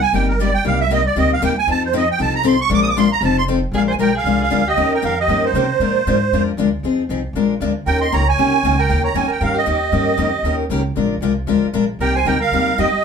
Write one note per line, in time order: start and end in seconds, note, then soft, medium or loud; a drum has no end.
0.02 0.13 G#5 loud
0.13 0.54 G1 medium
0.13 0.31 C3 medium
0.13 0.31 G3 medium
0.13 0.31 A#3 medium
0.13 0.32 D#4 medium
0.13 0.31 G4 medium
0.13 0.27 G5 medium
0.29 0.39 A#4 medium
0.39 0.49 C3 medium
0.39 0.49 G3 medium
0.39 0.49 A#3 loud
0.39 0.50 D#4 loud
0.39 0.50 G4 medium
0.39 0.53 D5 medium
0.54 0.65 G5 loud
0.64 1.06 C2 loud
0.64 0.82 C3 medium
0.64 0.82 G3 medium
0.64 0.82 A#3 medium
0.64 0.83 D#4 medium
0.64 0.83 G4 medium
0.64 0.79 F5 medium
0.81 0.91 E5 medium
0.90 1.00 C3 medium
0.90 1.00 G3 medium
0.90 1.00 A#3 medium
0.90 1.01 D#4 medium
0.90 1.01 G4 medium
0.90 1.05 D#5 medium
1.06 1.16 D5 medium
1.16 1.38 D2 medium
1.16 1.34 C3 medium
1.16 1.34 G3 medium
1.16 1.34 A#3 medium
1.16 1.34 D#4 medium
1.16 1.34 G4 medium
1.16 1.31 D#5 medium
1.33 1.43 F5 medium
1.42 1.64 D#2 medium
1.42 1.52 C3 medium
1.42 1.52 G3 medium
1.42 1.52 A#3 loud
1.42 1.52 D#4 loud
1.42 1.52 G4 loud
1.42 1.57 G5 medium
1.59 1.68 G#5 loud
1.67 2.09 F2 loud
1.67 1.85 F3 medium
1.67 1.85 C4 medium
1.67 1.86 D#4 medium
1.67 1.86 A4 medium
1.67 1.83 A5 loud
1.85 1.95 C5 medium
1.93 2.03 F3 medium
1.93 2.03 C4 medium
1.93 2.03 D#4 medium
1.93 2.04 A4 loud
1.93 2.09 D#5 medium
2.11 2.20 G5 loud
2.18 2.60 C2 medium
2.18 2.36 F3 medium
2.18 2.37 C4 medium
2.18 2.37 D#4 medium
2.18 2.37 A4 medium
2.18 2.34 A5 medium
2.35 2.45 A#5 loud
2.43 2.54 F3 medium
2.43 2.54 C4 loud
2.43 2.54 D#4 medium
2.43 2.55 A4 loud
2.47 2.60 C6 medium
2.61 2.71 C#6 loud
2.69 3.11 A#1 loud
2.69 2.88 F3 medium
2.69 2.88 G#3 medium
2.69 2.88 D4 medium
2.69 2.88 F4 medium
2.69 2.89 A#4 medium
2.74 2.81 D6 loud
2.82 2.89 D#6 loud
2.90 2.97 D6 medium
2.97 3.06 F3 medium
2.97 3.07 G#3 loud
2.97 3.07 D4 loud
2.97 3.07 F4 loud
2.97 3.07 A#4 medium
2.97 3.11 C6 loud
3.12 3.23 A#5 loud
3.21 3.62 F1 loud
3.21 3.40 F3 medium
3.21 3.40 C4 medium
3.21 3.41 D#4 medium
3.21 3.41 A4 medium
3.21 3.37 A5 loud
3.38 3.45 C6 loud
3.48 3.58 F3 medium
3.48 3.58 C4 loud
3.48 3.58 D#4 medium
3.48 3.58 A4 loud
3.72 3.97 A#1 medium
3.72 3.91 F3 medium
3.72 3.91 G#3 medium
3.72 3.92 D4 medium
3.72 3.92 F4 medium
3.72 3.81 G#4 medium
3.72 3.92 A#4 medium
3.77 3.82 F5 loud
3.88 3.93 C5 medium
3.88 3.95 G#5 medium
3.97 4.23 B1 medium
3.97 4.09 F3 medium
3.97 4.09 G#3 medium
3.97 4.09 D4 medium
3.97 4.09 F4 medium
3.97 4.13 A#4 medium
3.97 4.10 A#4 medium
4.02 4.15 G5 loud
4.15 4.38 G#4 medium
4.15 4.41 F5 loud
4.24 4.50 C2 medium
4.24 4.43 F3 medium
4.24 4.43 G#3 medium
4.24 4.44 D4 medium
4.24 4.44 F4 medium
4.24 4.44 A#4 medium
4.42 4.65 G#4 medium
4.42 4.68 F5 medium
4.50 4.76 D2 medium
4.50 4.61 F3 medium
4.50 4.61 G#3 medium
4.50 4.61 D4 medium
4.50 4.61 F4 medium
4.50 4.61 A#4 medium
4.67 4.90 G4 medium
4.67 4.93 D#5 loud
4.77 5.02 D#2 medium
4.77 4.95 D#3 medium
4.77 4.95 A#3 medium
4.77 4.95 C#4 medium
4.77 4.95 G4 medium
4.77 4.95 A#4 medium
4.94 5.04 A#4 medium
4.94 5.05 G5 medium
5.02 5.27 F2 medium
5.02 5.12 D#3 medium
5.02 5.12 A#3 medium
5.02 5.12 C#4 medium
5.02 5.13 G4 medium
5.02 5.13 A#4 medium
5.02 5.17 A#4 medium
5.02 5.18 F5 medium
5.20 5.43 G4 medium
5.20 5.45 D#5 medium
5.28 5.53 G2 medium
5.28 5.46 D#3 medium
5.28 5.47 A#3 medium
5.28 5.47 C#4 medium
5.28 5.47 G4 medium
5.28 5.47 A#4 medium
5.45 5.79 D#4 medium
5.45 6.43 C5 medium
5.53 5.79 C3 medium
5.53 5.64 D#3 medium
5.53 5.65 A#3 medium
5.53 5.65 C#4 medium
5.53 5.65 G4 medium
5.53 5.65 A#4 medium
5.79 6.05 A#2 medium
5.79 5.98 F3 medium
5.79 5.98 G#3 medium
5.79 5.98 D4 medium
5.79 5.98 F4 medium
5.79 5.99 A#4 medium
6.07 6.31 G#2 medium
6.07 6.16 F3 medium
6.07 6.17 G#3 medium
6.07 6.17 D4 medium
6.07 6.17 F4 medium
6.07 6.17 A#4 medium
6.32 6.57 F2 medium
6.32 6.50 F3 medium
6.32 6.51 G#3 medium
6.32 6.50 D4 medium
6.32 6.51 F4 medium
6.32 6.51 A#4 medium
6.57 6.82 D2 medium
6.57 6.68 F3 medium
6.57 6.68 G#3 medium
6.57 6.68 D4 medium
6.57 6.68 F4 medium
6.57 6.68 A#4 medium
6.83 7.08 F2 medium
6.83 7.02 F3 medium
6.83 7.02 C4 medium
6.83 7.02 D#4 medium
6.83 7.02 G#4 medium
7.09 7.32 C2 medium
7.09 7.19 F3 medium
7.09 7.20 C4 medium
7.09 7.20 D#4 medium
7.09 7.20 G#4 medium
7.33 7.59 A#1 medium
7.33 7.53 F3 medium
7.33 7.53 G#3 medium
7.33 7.53 D4 medium
7.33 7.54 F4 medium
7.33 7.54 A#4 medium
7.60 7.86 D2 medium
7.60 7.71 F3 medium
7.60 7.71 G#3 medium
7.60 7.71 D4 medium
7.60 7.71 F4 medium
7.60 7.71 A#4 medium
7.86 8.11 D#2 medium
7.86 8.04 D#3 medium
7.86 8.05 A#3 medium
7.86 8.05 C#4 medium
7.86 8.05 G4 medium
7.86 8.00 A#4 medium
7.86 8.05 A#4 medium
7.86 8.00 G5 loud
8.01 8.12 D#5 medium
8.01 8.13 C6 loud
8.12 8.37 C#2 medium
8.12 8.22 D#3 medium
8.12 8.22 A#3 medium
8.12 8.22 C#4 medium
8.12 8.22 G4 medium
8.12 8.23 A#4 medium
8.12 8.26 C#5 medium
8.12 8.28 A#5 loud
8.27 8.75 C#5 medium
8.27 8.81 G#5 loud
8.37 8.63 C2 medium
8.37 8.56 D#3 medium
8.37 8.56 A#3 medium
8.37 8.56 C#4 medium
8.37 8.57 G4 medium
8.37 8.57 A#4 medium
8.63 8.89 C#2 medium
8.63 8.74 D#3 medium
8.63 8.74 A#3 medium
8.63 8.74 C#4 medium
8.63 8.74 G4 medium
8.63 8.75 A#4 medium
8.79 9.03 A#4 medium
8.79 9.02 G5 medium
8.89 9.14 D#2 medium
8.89 9.07 D#3 medium
8.89 9.08 A#3 medium
8.89 9.08 C#4 medium
8.89 9.08 G4 medium
8.89 9.08 A#4 medium
9.04 9.14 C#5 medium
9.04 9.16 A#5 medium
9.14 9.28 F2 medium
9.14 9.25 D#3 medium
9.14 9.25 A#3 medium
9.14 9.25 C#4 medium
9.14 9.25 G4 medium
9.14 9.26 A#4 medium
9.14 9.27 C#5 medium
9.14 9.31 G#5 medium
9.28 9.39 A#4 medium
9.28 9.42 G5 medium
9.28 muted upright bass stroke soft
9.41 9.66 G2 medium
9.41 9.59 D#3 medium
9.41 9.59 A#3 medium
9.41 9.60 C#4 medium
9.41 9.60 G4 medium
9.41 9.54 A#4 medium
9.41 9.60 A#4 medium
9.41 9.57 F5 medium
9.54 10.54 G4 medium
9.54 10.56 D#5 medium
9.66 9.91 D#2 medium
9.66 9.76 D#3 medium
9.66 9.76 A#3 medium
9.66 9.77 C#4 medium
9.66 9.77 G4 medium
9.66 9.77 A#4 medium
9.92 10.17 G2 medium
9.92 10.10 D#3 medium
9.92 10.10 A#3 medium
9.92 10.11 C#4 medium
9.92 10.11 G4 medium
9.92 10.11 A#4 medium
10.17 10.42 F2 medium
10.17 10.28 D#3 medium
10.17 10.28 A#3 medium
10.17 10.29 C#4 medium
10.17 10.29 G4 medium
10.17 10.29 A#4 medium
10.43 10.69 D#2 medium
10.43 10.63 D#3 medium
10.43 10.62 A#3 medium
10.43 10.63 C#4 medium
10.43 10.63 G4 medium
10.43 10.63 A#4 medium
10.69 10.95 C#2 medium
10.69 10.80 D#3 medium
10.69 10.80 A#3 medium
10.69 10.81 C#4 medium
10.69 10.81 G4 medium
10.69 10.81 A#4 loud
10.95 11.20 A#1 medium
10.95 11.14 F3 medium
10.95 11.14 G#3 medium
10.95 11.14 D4 medium
10.95 11.14 F4 medium
10.95 11.14 A#4 medium
11.21 11.46 C2 medium
11.21 11.32 F3 medium
11.21 11.32 G#3 medium
11.21 11.32 D4 medium
11.21 11.32 F4 medium
11.21 11.32 A#4 medium
11.47 11.60 D2 medium
11.47 11.65 F3 medium
11.47 11.66 G#3 medium
11.47 11.66 D4 medium
11.47 11.66 F4 medium
11.47 11.66 A#4 medium
11.63 muted upright bass stroke soft
11.73 11.98 A#1 medium
11.73 11.84 F3 medium
11.73 11.83 G#3 medium
11.73 11.84 D4 medium
11.73 11.84 F4 medium
11.73 11.84 A#4 medium
11.99 12.24 C2 medium
11.99 12.18 C3 medium
11.99 12.18 G3 medium
11.99 12.18 A#3 medium
11.99 12.18 D#4 medium
11.99 12.18 G4 medium
11.99 12.14 A#4 medium
11.99 12.15 G5 loud
12.15 12.25 C5 medium
12.15 12.26 G#5 medium
12.25 12.50 D2 medium
12.25 12.35 C3 medium
12.25 12.36 G3 medium
12.25 12.36 A#3 medium
12.25 12.36 D#4 medium
12.25 12.36 G4 medium
12.25 12.39 A#4 medium
12.25 12.39 G5 loud
12.40 12.74 A#4 medium
12.40 12.79 F5 loud
12.51 12.76 D#2 medium
12.51 12.70 C3 medium
12.51 12.70 G3 medium
12.51 12.70 A#3 medium
12.51 12.70 D#4 medium
12.51 12.70 G4 medium
12.78 12.91 F2 medium
12.78 12.87 C3 medium
12.78 12.88 G3 medium
12.78 12.87 A#3 medium
12.78 12.87 D#4 medium
12.78 13.02 G4 medium
12.78 12.88 G4 loud
12.78 13.04 D#5 medium
12.92 muted upright bass stroke soft